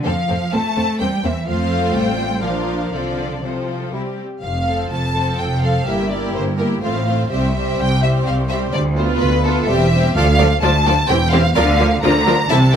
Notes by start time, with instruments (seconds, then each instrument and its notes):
0.05 double bass section F2, cello section F3, viola section A3 C4, violin section C4 A4 F5
0.28 double bass section F2, viola section A3 C4, violin section C4 A4
0.52 double bass section F2, viola section A3 C4, cello section A3, violin section C4 A4 A5
0.76 double bass section F2, viola section A3 C4, violin section C4 A4
1.00 double bass section E2, cello section G3, viola section A#3 C4, violin section C4 C5 G5
1.24 double bass section E2, cello section E3, viola section A#3 C4, violin section C4 C5 E5
1.47 double bass section F2, cello section F3, viola section A3 C4, violin section F4 C5 F5
1.95 double bass section A1, cello section G3, violin section G5
2.43 double bass section A#1, cello section F3, viola section F3 D4, violin section F4 A#4 F5
2.93 double bass section C2, cello section D3, viola section F3 C4, violin section F4 A4 D5
3.42 cello section C3, viola section F3 C4, violin section F4 A4 C5
3.92 double bass section C2, viola section G3 C4, violin section E4 G4
4.41 double bass section F1, cello section F2, violin section F5
4.66 viola section F3 C4, violin section A4
4.90 double bass section F1, cello section F2, violin section A5
5.14 viola section F3 C4, violin section A4
5.38 double bass section F1, cello section F2, violin section G5
5.63 viola section F3 C4, violin section A4 F5
5.86 double bass section G1, cello section G2, viola section A#3 E4, violin section G4 A#4 E5
6.11 viola section A#3 E4, violin section G4 A#4 D5
6.34 double bass section G1, cello section G2, violin section C5
6.57 viola section A#3 E4, violin section G4 A#4
6.82 double bass section A1, cello section A2, viola section A3 C4, violin section F4 C5 F5
7.06 viola section A3 C4, violin section F4 C5
7.30 cello section C2, double bass section C2, viola section G3 C4, violin section G4 C5 E5
7.54 viola section G3 C4, violin section G4 C5
7.78 cello section C2, double bass section C2, violin section G5
8.02 viola section G3 C4, violin section G4 C5 E5
8.26 cello section C2, double bass section C2, violin section F5
8.49 viola section G3 C4, violin section G4 C5 E5
8.73 cello section D2, double bass section D2, violin section D5
8.96 viola section B3 F4, violin section F4 B4 C5
9.20 cello section D2, double bass section D2, violin section B4
9.44 viola section B3 F4, violin section F4 A4 B4
9.67 double bass section E1, cello section E2, viola section G3 C4, violin section G4 C5 E5
9.92 viola section G3 C4, violin section G4 C5
10.15 cello section D2, double bass section D2, viola section F3 F4, violin section A4 D5 F5
10.39 viola section F3 F4, violin section A4 D5
10.61 cello section D2, double bass section D2, viola section F3 F4, violin section A4 D5 A5
10.86 viola section F3 F4, violin section A4 D5
11.09 double bass section E1, cello section E2, viola section E3 C4, violin section G4 C5 G5
11.32 viola section E3 C4, violin section G4 C5 F5
11.55 double bass section D2, cello section D3, viola section F3 F4, violin section A#4 D5 F5
11.79 viola section F3 F4, violin section A#4 D5
12.02 double bass section D2, cello section D3, viola section F3 F4, violin section A#4 D5 A#5
12.26 viola section F3 F4, violin section A#4 D5
12.50 double bass section C2, cello section C3, viola section E3 C4, violin section E4 E5 A5